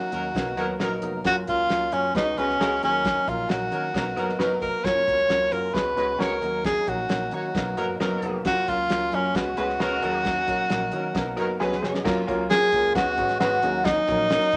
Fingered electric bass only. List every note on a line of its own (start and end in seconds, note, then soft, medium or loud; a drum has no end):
0.01 muted fingered electric bass stroke soft
0.12 0.31 D#2 medium
0.35 0.58 B1 medium
0.58 0.80 D#2 medium
0.80 0.98 A#1 medium
1.02 1.20 F1 medium
1.25 1.43 F#1 loud
1.48 1.66 C#2 medium
1.70 1.88 C#2 medium
1.92 2.10 F#2 medium
2.15 2.33 C#2 medium
2.37 2.55 C#2 medium
2.60 2.78 C#2 medium
2.82 3.19 D#2 medium
3.28 3.46 A#1 medium
3.49 3.68 A#1 medium
3.72 3.90 D#3 medium
3.94 4.13 B1 medium
4.17 4.35 F#1 medium
4.39 4.57 F#1 medium
4.61 4.71 F1 medium
4.84 5.03 F#1 loud
5.07 5.26 C#2 medium
5.29 5.47 C#2 medium
5.52 5.70 F#2 medium
5.74 5.93 C#2 medium
5.97 6.15 C#2 medium
6.19 6.38 C#2 medium
6.42 6.79 D#2 medium
6.88 7.06 A#1 medium
7.09 7.28 A#1 medium
7.32 7.50 D#3 medium
7.55 7.73 B1 medium
7.77 7.87 F#1 medium
7.88 7.98 F#1 medium
7.99 8.18 F#1 medium
8.22 8.41 F1 medium
8.45 8.63 F#1 loud
8.68 8.86 C#2 medium
8.90 9.08 C#2 medium
9.12 9.31 F#2 medium
9.35 9.53 C#2 medium
9.57 9.76 C#2 medium
9.80 9.99 C#2 medium
10.03 10.48 D#2 medium
10.48 10.67 A#1 medium
10.70 10.89 A#1 medium
10.93 11.11 D#3 medium
11.15 11.34 B1 medium
11.38 11.56 F#1 medium
11.60 11.79 C#2 medium
11.84 12.02 F1 medium
12.05 12.24 F#1 loud
12.29 12.47 C#2 medium
12.62 muted fingered electric bass stroke soft
12.73 12.91 C#2 loud
12.95 13.14 C#2 loud
13.17 13.36 G#1 medium
13.41 13.59 G#1 loud
13.63 14.00 D#2 medium
14.08 14.36 A#1 medium
14.53 14.57 D#2 medium